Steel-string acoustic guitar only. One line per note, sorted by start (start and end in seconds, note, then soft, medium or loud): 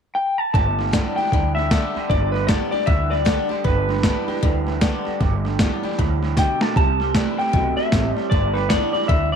0.55 1.29 G2 medium
0.93 1.16 G3 medium
0.93 1.16 B3 medium
0.93 1.17 D4 medium
0.93 1.17 G4 medium
1.18 1.33 D4 soft
1.18 1.32 G4 medium
1.33 2.08 D3 loud
1.71 2.09 G3 medium
1.71 2.09 B3 medium
1.71 2.09 D4 medium
1.71 2.09 G4 loud
2.11 2.85 G2 medium
2.48 2.72 G3 medium
2.48 2.72 B3 medium
2.48 2.72 D4 medium
2.48 2.71 G4 medium
2.72 2.88 D4 soft
2.72 2.87 G4 medium
2.87 3.62 D3 loud
3.25 3.49 G3 medium
3.25 3.49 B3 loud
3.25 3.50 D4 loud
3.25 3.48 G4 loud
3.49 3.65 D4 soft
3.49 3.64 G4 medium
3.64 4.40 G2 medium
4.03 4.27 G3 medium
4.03 4.28 B3 medium
4.03 4.28 D4 medium
4.03 4.27 G4 loud
4.28 4.43 D4 soft
4.28 4.43 G4 medium
4.43 5.18 D3 loud
4.81 5.19 G3 medium
4.81 5.19 B3 loud
4.81 5.20 D4 loud
4.81 5.20 G4 medium
5.21 5.96 G2 medium
5.60 5.83 G3 medium
5.60 5.83 B3 medium
5.60 5.84 D4 medium
5.60 5.82 G4 medium
5.83 5.99 D4 soft
5.83 5.98 G4 medium
5.99 6.36 A2 medium
6.37 6.75 B2 medium
6.77 7.51 C3 medium
7.15 7.38 E3 medium
7.15 7.39 G3 medium
7.15 7.39 C4 medium
7.15 7.38 E4 medium
7.39 7.54 C4 soft
7.39 7.54 E4 medium
7.53 7.91 B2 loud
7.93 8.31 A2 medium
8.32 9.07 G2 medium
8.70 8.93 G3 medium
8.70 8.94 B3 medium
8.70 8.94 D4 loud
8.70 8.93 G4 medium
8.94 9.10 D4 soft
8.94 9.09 G4 medium
9.09 9.36 D3 loud